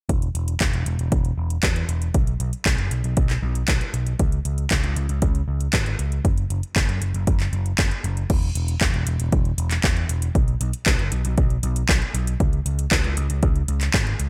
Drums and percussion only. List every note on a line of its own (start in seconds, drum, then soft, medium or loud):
0.09 kick loud
0.09 closed hi-hat medium
0.22 closed hi-hat soft
0.35 closed hi-hat medium
0.48 closed hi-hat soft
0.61 kick loud
0.61 clap loud
0.61 closed hi-hat medium
0.73 closed hi-hat soft
0.86 closed hi-hat medium
0.99 closed hi-hat soft
1.12 kick loud
1.12 closed hi-hat medium
1.25 closed hi-hat soft
1.50 closed hi-hat soft
1.63 kick loud
1.63 clap loud
1.63 closed hi-hat medium
1.76 closed hi-hat soft
1.89 closed hi-hat medium
2.02 closed hi-hat soft
2.14 kick loud
2.14 closed hi-hat medium
2.27 closed hi-hat soft
2.40 closed hi-hat medium
2.53 closed hi-hat soft
2.66 kick loud
2.66 clap loud
2.66 closed hi-hat medium
2.78 closed hi-hat soft
2.91 closed hi-hat medium
3.04 closed hi-hat soft
3.17 kick loud
3.17 closed hi-hat medium
3.30 clap soft
3.30 closed hi-hat soft
3.55 closed hi-hat soft
3.68 kick loud
3.68 clap loud
3.68 closed hi-hat medium
3.81 closed hi-hat soft
3.94 closed hi-hat medium
4.07 closed hi-hat soft
4.19 kick loud
4.19 closed hi-hat medium
4.32 closed hi-hat soft
4.45 closed hi-hat medium
4.58 closed hi-hat soft
4.71 kick loud
4.71 clap loud
4.71 closed hi-hat medium
4.84 closed hi-hat soft
4.96 closed hi-hat medium
5.09 closed hi-hat soft
5.22 kick loud
5.22 closed hi-hat medium
5.35 closed hi-hat soft
5.61 closed hi-hat soft
5.73 kick loud
5.73 clap loud
5.73 closed hi-hat medium
5.86 closed hi-hat soft
5.99 closed hi-hat medium
6.12 closed hi-hat soft
6.25 kick loud
6.25 closed hi-hat medium
6.38 closed hi-hat soft
6.50 closed hi-hat medium
6.63 closed hi-hat soft
6.76 kick loud
6.76 clap loud
6.76 closed hi-hat medium
6.89 closed hi-hat soft
7.02 closed hi-hat medium
7.14 closed hi-hat soft
7.27 kick loud
7.27 closed hi-hat medium
7.40 clap soft
7.40 closed hi-hat soft
7.53 closed hi-hat soft
7.66 closed hi-hat soft
7.78 kick loud
7.78 clap loud
7.78 closed hi-hat medium
7.91 closed hi-hat soft
8.04 closed hi-hat medium
8.17 closed hi-hat soft
8.30 kick loud
8.30 closed hi-hat medium
8.30 crash medium
8.43 closed hi-hat soft
8.55 closed hi-hat medium
8.68 closed hi-hat medium
8.81 kick loud
8.81 clap loud
8.81 closed hi-hat medium
8.94 closed hi-hat soft
9.07 closed hi-hat loud
9.20 closed hi-hat medium
9.32 kick loud
9.32 closed hi-hat medium
9.45 closed hi-hat soft
9.58 closed hi-hat medium
9.71 clap soft
9.71 closed hi-hat medium
9.84 kick loud
9.84 clap loud
9.84 closed hi-hat medium
9.97 closed hi-hat soft
10.09 closed hi-hat medium
10.22 closed hi-hat medium
10.35 kick loud
10.35 closed hi-hat medium
10.48 closed hi-hat soft
10.61 closed hi-hat medium
10.73 closed hi-hat soft
10.86 kick loud
10.86 clap loud
10.86 closed hi-hat medium
10.99 closed hi-hat soft
11.12 closed hi-hat medium
11.25 closed hi-hat medium
11.38 kick loud
11.38 closed hi-hat medium
11.50 closed hi-hat soft
11.63 closed hi-hat medium
11.76 closed hi-hat soft
11.89 kick loud
11.89 clap loud
11.89 closed hi-hat medium
12.02 closed hi-hat soft
12.15 closed hi-hat medium
12.27 closed hi-hat soft
12.40 kick loud
12.40 closed hi-hat soft
12.53 closed hi-hat soft
12.66 closed hi-hat medium
12.79 closed hi-hat soft
12.91 kick loud
12.91 clap loud
12.91 closed hi-hat soft
13.04 closed hi-hat soft
13.17 closed hi-hat medium
13.30 closed hi-hat medium
13.43 kick loud
13.43 closed hi-hat medium
13.56 closed hi-hat soft
13.68 closed hi-hat medium
13.81 clap soft
13.81 closed hi-hat soft
13.94 kick loud
13.94 clap loud
13.94 closed hi-hat medium
14.07 closed hi-hat soft
14.20 closed hi-hat medium